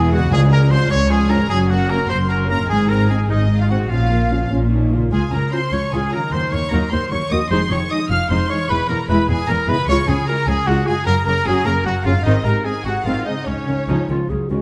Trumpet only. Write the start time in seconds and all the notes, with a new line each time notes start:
Already playing: G#4
0.13 F#4
0.33 G#4
0.52 A#4
0.71 C5
0.91 C#5
1.10 G#4
1.30 A#4
1.50 G#4
1.70 F#4
1.90 A#4
2.10 C5
2.30 A#4
2.49 A#4
2.69 G#4
2.89 A#4
3.10 G#4
3.30 D#4
3.61 F4
3.71 F#4
3.91 F4
5.13 G#4
5.32 A#4
5.53 C5
5.73 C#5
5.93 G#4
6.14 A#4
6.33 C5
6.53 C#5
6.72 A#4
6.92 C5
7.12 C#5
7.32 D#5
7.51 C5
7.72 C#5
7.91 D#5
8.11 F5
8.30 C5
8.49 C#5
8.69 B4
8.89 A#4
9.09 B4
9.29 G#4
9.49 A#4
9.69 B4
9.89 C#5
10.08 G#4
10.28 A#4
10.48 G#4
10.67 F#4
10.86 G#4
11.06 A#4
11.26 A#4
11.46 G#4
11.66 A#4
11.86 F#4
12.06 F4
12.25 D#4
12.46 A#4
12.65 G#4
12.85 F#4
13.06 F4
13.26 D#4
13.47 C#4